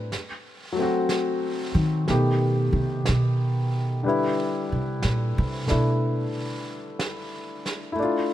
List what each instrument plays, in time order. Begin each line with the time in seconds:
Already playing: grand piano G3 A3 C4 D4 A4 B4
0.12 brush sweep, snare
0.72 grand piano F#3 A3
0.79 grand piano C4 F#4
1.09 brush sweep, snare
1.75 upright bass D#3
2.08 upright bass B2, grand piano D#3 A3 B3 G4, brush sweep, snare
2.73 upright bass C3
3.06 upright bass B2, brush sweep, snare
4.03 grand piano D3 G3 B4, brush sweep
4.08 grand piano E4
4.72 upright bass C3
5.02 upright bass A#2, brush sweep, snare
5.38 upright bass C3
5.67 upright bass B2, grand piano A3 D4 E4, snare
6.01 brush sweep
6.99 brush sweep, snare
7.66 snare
7.92 grand piano A3 E4
7.97 grand piano D4, brush sweep
8.03 grand piano F4